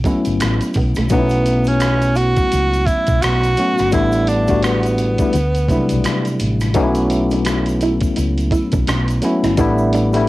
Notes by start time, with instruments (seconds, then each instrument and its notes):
0.04 tine electric piano F#3 A3 B3 C#4 E4, nylon-string guitar E4, kick, closed hi-hat, shaker
0.25 fingered electric bass G1, closed hi-hat, shaker
0.40 fingered electric bass A1, finger snap, muted nylon-string guitar stroke, cross-stick, closed hi-hat, shaker
0.61 closed hi-hat, shaker
0.74 fingered electric bass B1, nylon-string guitar B3, kick, open hi-hat, shaker
0.95 fingered electric bass B1, nylon-string guitar A3, cross-stick, closed hi-hat, shaker
1.09 fingered electric bass B1, tine electric piano F#3 A3 B3 C#4 D#4, tenor saxophone B3, kick, closed hi-hat, shaker
1.19 tine electric piano E4
1.29 closed hi-hat, shaker
1.46 closed hi-hat, shaker
1.64 tenor saxophone C#4, closed hi-hat, shaker
1.80 finger snap, cross-stick, closed hi-hat, shaker
2.02 closed hi-hat, shaker
2.15 tenor saxophone F#4, closed hi-hat, shaker
2.37 kick, closed hi-hat, shaker
2.52 fingered electric bass C#2, closed hi-hat, shaker
2.74 closed hi-hat, shaker
2.86 tenor saxophone E4, kick, closed hi-hat, shaker
3.07 fingered electric bass B1, kick, closed hi-hat, shaker
3.22 fingered electric bass B1, tenor saxophone F#4, finger snap, cross-stick, closed hi-hat, shaker
3.44 closed hi-hat, shaker
3.57 tine electric piano F#3 A3 B3 C#4 F#4, closed hi-hat, shaker
3.78 fingered electric bass G1, cross-stick, closed hi-hat, shaker
3.92 fingered electric bass A1, tine electric piano G3 A3 B3 D4 E4, tenor saxophone E4, kick, closed hi-hat, shaker
4.12 closed hi-hat, shaker
4.27 tenor saxophone D4, closed hi-hat, shaker
4.47 tine electric piano G3 A3 B3 D4 F#4, kick, closed hi-hat, shaker
4.63 tenor saxophone B3, finger snap, cross-stick, closed hi-hat, shaker
4.83 closed hi-hat, shaker
4.98 closed hi-hat, shaker
5.18 tine electric piano G3 A3 B3 D4 E4, kick, closed hi-hat, shaker
5.33 fingered electric bass D2, closed hi-hat, shaker
5.55 closed hi-hat, shaker
5.68 tine electric piano C3 F#3 A3 D4 E4, kick, closed hi-hat, shaker
5.75 tine electric piano G3
5.89 fingered electric bass B1, closed hi-hat, shaker
6.04 finger snap, cross-stick, closed hi-hat, shaker
6.25 closed hi-hat, shaker
6.39 fingered electric bass A1, closed hi-hat, shaker
6.60 cross-stick, closed hi-hat, shaker
6.74 fingered electric bass B1, tine electric piano F#3 A3 B3 C#4 D#4, nylon-string guitar B3, kick, closed hi-hat, shaker
6.83 tine electric piano E4
6.95 closed hi-hat, shaker
7.10 muted nylon-string guitar stroke, closed hi-hat, shaker
7.30 nylon-string guitar D4, closed hi-hat, shaker
7.45 finger snap, cross-stick, closed hi-hat, shaker
7.66 closed hi-hat, shaker
7.81 nylon-string guitar E4, closed hi-hat, shaker
8.01 kick, closed hi-hat, shaker
8.16 fingered electric bass C#2, muted nylon-string guitar stroke, closed hi-hat, shaker
8.38 closed hi-hat, shaker
8.51 nylon-string guitar E4, kick, closed hi-hat, shaker
8.72 fingered electric bass B1, nylon-string guitar D4, kick, closed hi-hat, shaker
8.87 fingered electric bass B1, nylon-string guitar D4, finger snap, cross-stick, closed hi-hat, shaker
9.08 closed hi-hat, shaker
9.22 tine electric piano F#3 A3 B3 C#4 E4, muted nylon-string guitar stroke, closed hi-hat, shaker
9.43 fingered electric bass G1, nylon-string guitar E4, cross-stick, closed hi-hat, shaker
9.57 fingered electric bass A1, tine electric piano G3 A3 B3 D4 E4, nylon-string guitar E4, kick, closed hi-hat, shaker
9.78 shaker
9.93 nylon-string guitar D4, closed hi-hat, shaker
10.13 tine electric piano G3 A3 B3 D4 E4, closed hi-hat, shaker